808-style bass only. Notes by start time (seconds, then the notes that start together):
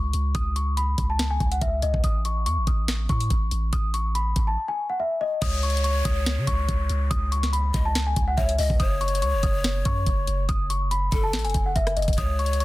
Already playing: C#2
0.14 C#2
0.35 C#2
0.98 C#2
1.40 C#2
1.61 C#2
1.83 C#2
1.94 C#2
2.04 A1
2.46 E2
2.57 A1
2.67 A1
3.09 A2
3.30 A1
3.52 A1
3.73 A1
4.36 A1
5.42 C#2
6.05 C#2
6.37 C#3
6.47 C#2
6.69 C#2
6.90 C#2
7.11 C#2
7.74 C#2
8.16 C#2
8.38 C#2
8.59 C#2
8.70 C#2
8.80 F#1
9.22 C#2
9.33 F#1
9.43 F#1
9.86 F#2
10.07 F#1
10.28 F#1
10.49 F#1
11.12 F#1
11.33 A1
11.45 F#1
11.55 F#1
11.76 F#1
11.97 F#1
12.08 F#1
12.18 C#2